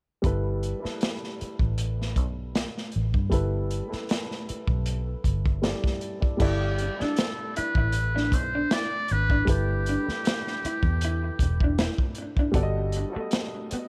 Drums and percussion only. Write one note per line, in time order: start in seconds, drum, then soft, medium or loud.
0.24 kick medium
0.24 closed hi-hat medium
0.63 closed hi-hat soft
0.85 snare soft
1.01 snare medium
1.01 closed hi-hat medium
1.24 snare soft
1.41 closed hi-hat medium
1.59 kick medium
1.78 closed hi-hat medium
2.02 snare soft
2.16 kick medium
2.16 closed hi-hat soft
2.55 snare medium
2.55 closed hi-hat medium
2.78 snare soft
2.92 closed hi-hat soft
3.14 kick medium
3.32 kick medium
3.32 closed hi-hat medium
3.71 closed hi-hat soft
3.92 snare soft
4.09 snare medium
4.09 closed hi-hat medium
4.31 snare soft
4.49 closed hi-hat medium
4.67 kick medium
4.86 closed hi-hat medium
5.24 kick medium
5.24 closed hi-hat medium
5.46 kick medium
5.63 snare medium
5.63 closed hi-hat medium
5.84 kick medium
5.84 snare soft
6.01 closed hi-hat soft
6.22 kick medium
6.40 kick medium
6.40 crash medium
6.78 closed hi-hat medium
7.00 snare soft
7.16 snare loud
7.16 closed hi-hat medium
7.56 closed hi-hat medium
7.75 kick medium
7.92 closed hi-hat medium
8.17 snare soft
8.32 kick medium
8.32 closed hi-hat medium
8.71 snare medium
8.71 closed hi-hat medium
9.08 closed hi-hat soft
9.30 kick medium
9.47 kick medium
9.47 closed hi-hat medium
9.86 closed hi-hat medium
10.09 snare soft
10.25 snare loud
10.25 closed hi-hat medium
10.47 snare soft
10.65 closed hi-hat medium
10.83 kick medium
11.01 closed hi-hat medium
11.39 kick medium
11.39 closed hi-hat medium
11.60 kick medium
11.78 snare loud
11.78 closed hi-hat medium
11.98 kick medium
12.15 closed hi-hat soft
12.37 kick medium
12.54 kick medium
12.54 closed hi-hat medium
12.92 closed hi-hat medium
13.31 snare loud
13.31 closed hi-hat medium
13.71 closed hi-hat medium